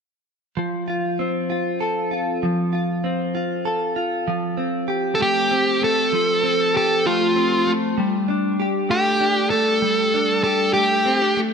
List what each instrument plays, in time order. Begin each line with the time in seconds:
0.57 clean electric guitar F3
0.88 clean electric guitar F4
1.19 clean electric guitar C4
1.50 clean electric guitar F4
1.80 clean electric guitar A4
2.11 clean electric guitar F4
2.43 clean electric guitar F3
2.73 clean electric guitar F4
3.04 clean electric guitar C4
3.35 clean electric guitar F4
3.65 clean electric guitar A4
3.96 clean electric guitar F4
4.28 clean electric guitar F3
4.57 clean electric guitar C4
4.88 clean electric guitar G4
5.15 lead electric guitar A4
5.19 clean electric guitar A3, lead electric guitar G4
5.51 clean electric guitar C4
5.82 clean electric guitar A3, lead electric guitar A4
6.13 clean electric guitar F3
6.43 clean electric guitar C4
6.74 clean electric guitar G4, lead electric guitar A4
7.06 clean electric guitar A3, lead electric guitar F4
7.36 clean electric guitar C4
7.67 clean electric guitar A3
7.98 clean electric guitar G3
8.28 clean electric guitar D4
8.60 clean electric guitar G4
8.89 clean electric guitar A3, lead electric guitar G4
9.20 clean electric guitar D4
9.50 clean electric guitar A3, lead electric guitar A4
9.82 clean electric guitar G3
10.14 clean electric guitar D4
10.44 clean electric guitar G4, lead electric guitar A4
10.73 clean electric guitar A3, lead electric guitar G4
11.05 clean electric guitar C4
11.22 clean electric guitar D4
11.37 clean electric guitar A3